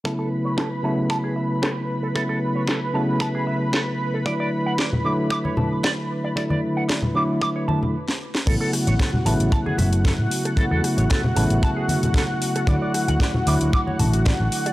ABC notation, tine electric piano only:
X:1
M:4/4
L:1/8
Q:"Swing 16ths" 1/4=114
K:A
V:1 name="Tine electric piano"
[C,F,A,B,E]3 [C,F,A,B,E]4- [C,F,A,B,E] | [C,F,A,B,E]3 [C,F,A,B,E]4- [C,F,A,B,E] | [D,F,A,E]3 [D,F,A,E]4- [D,F,A,E] | [D,F,A,E]3 [D,F,A,E]3 z2 |
[C,F,A,B,E]3 [C,F,A,B,E]4- [C,F,A,B,E] | [C,F,A,B,E]3 [C,F,A,B,E]4- [C,F,A,B,E] | [D,F,A,E]3 [D,F,A,E]4- [D,F,A,E] |]